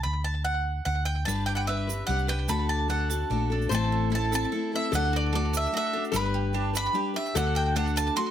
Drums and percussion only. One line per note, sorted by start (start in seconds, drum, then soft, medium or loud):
1.29 shaker medium
1.90 shaker medium
2.10 shaker soft
2.19 shaker soft
2.48 shaker loud
2.90 shaker soft
3.11 shaker medium
3.62 shaker soft
3.71 shaker medium
4.33 shaker loud
4.44 shaker soft
4.93 shaker loud
5.54 shaker loud
5.65 shaker soft
6.05 shaker soft
6.14 shaker loud
6.75 shaker loud
6.85 shaker soft
7.26 shaker soft
7.36 shaker loud
7.77 shaker soft
7.87 shaker soft
7.97 shaker loud
8.07 shaker soft